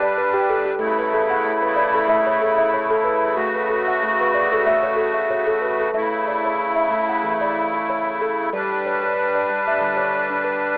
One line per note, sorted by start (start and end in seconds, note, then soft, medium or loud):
0.00 0.59 G3 medium
0.00 0.75 G3 medium
0.00 0.75 D4 medium
0.00 0.16 G4 medium
0.00 0.16 B4 medium
0.00 0.76 B4 medium
0.00 0.48 D5 medium
0.18 0.66 B4 medium
0.34 0.65 G4 medium
0.49 0.98 A4 medium
0.66 0.97 G4 medium
0.79 5.91 C#3 medium
0.79 1.43 A3 medium
0.79 5.91 A3 medium
0.79 3.34 E4 medium
0.99 1.45 B4 medium
1.14 1.62 A4 medium
1.30 1.77 F#5 medium
1.45 1.76 A3 medium
1.62 2.09 B4 medium
1.76 2.26 D5 medium
1.95 2.26 A4 medium
2.08 3.16 A3 loud
2.08 2.57 E5 medium
2.27 2.72 C#5 medium
2.41 2.73 A4 medium
2.58 3.05 E5 medium
2.74 3.23 C#5 medium
2.90 3.22 A4 medium
3.04 3.54 B4 medium
3.35 4.02 A3 medium
3.35 5.91 F#4 medium
3.55 4.02 B4 medium
3.70 4.19 A4 medium
3.88 4.34 F#5 medium
4.03 4.34 A3 medium
4.21 4.67 B4 medium
4.34 4.84 D5 medium
4.52 4.84 A4 medium
4.66 5.74 A3 loud
4.66 5.13 E5 medium
4.83 5.29 C#5 medium
4.97 5.29 A4 medium
5.14 5.61 E5 medium
5.31 5.80 C#5 medium
5.47 5.78 A4 medium
5.61 6.11 B4 medium
5.79 6.12 A4 medium
5.94 8.50 C#3 medium
5.94 6.26 A3 medium
5.94 8.50 A3 medium
5.94 8.50 E4 medium
5.94 6.44 E5 medium
6.27 6.76 D5 medium
6.45 6.47 C#5 medium
6.76 7.23 E5 medium
6.90 7.22 A3 medium
7.09 7.55 F#5 medium
7.23 8.32 E3 medium
7.23 7.55 A3 medium
7.41 7.88 D5 medium
7.74 8.05 E4 medium
7.89 8.38 C#5 medium
8.21 8.52 A4 medium
8.53 9.48 G3 medium
8.53 10.78 G3 medium
8.53 10.78 D4 medium
8.53 10.78 B4 medium
8.53 9.02 D5 medium
8.86 9.34 C#5 medium
9.04 9.05 B4 medium
9.35 9.81 D5 medium
9.50 9.80 G3 medium
9.68 10.13 E5 medium
9.80 10.78 D3 medium
9.80 10.12 G3 medium
9.97 10.44 C#5 medium
10.30 10.62 D4 medium
10.44 10.78 B4 medium